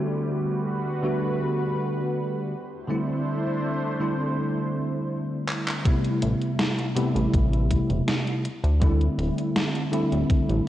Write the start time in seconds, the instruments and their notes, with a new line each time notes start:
Already playing: tine electric piano D3 G3 A3 B3 F#4, analog synth pad G3 F#4 B4
1.03 tine electric piano D3 G3 A3 B3 F#4
2.52 analog synth pad A3 D4 E4 C5
2.88 tine electric piano D3 G3 A3 C4 E4
4.00 tine electric piano D3 G3 A3 C4 E4
5.48 clap
5.68 clap
5.84 tine electric piano C3 G3 A3 B3 E4, kick, closed hi-hat
6.04 closed hi-hat
6.22 analog synth bass A1, closed hi-hat
6.42 closed hi-hat
6.59 snare, closed hi-hat
6.79 closed hi-hat
6.96 tine electric piano C3 G3 A3 B3 E4, closed hi-hat
7.16 analog synth bass A1, closed hi-hat
7.34 analog synth bass A1, kick, closed hi-hat
7.53 closed hi-hat
7.71 kick, closed hi-hat
7.89 analog synth bass E1, closed hi-hat
8.08 snare, closed hi-hat
8.27 closed hi-hat
8.45 closed hi-hat
8.64 analog synth bass D2, closed hi-hat
8.80 tine electric piano D3 G3 A3 C4 E4, kick, closed hi-hat
9.01 closed hi-hat
9.18 analog synth bass D1, closed hi-hat
9.38 closed hi-hat
9.56 snare, closed hi-hat
9.75 closed hi-hat
9.92 tine electric piano D3 G3 A3 C4 E4, closed hi-hat
10.12 analog synth bass D1, closed hi-hat
10.30 kick, closed hi-hat
10.49 analog synth bass A1, closed hi-hat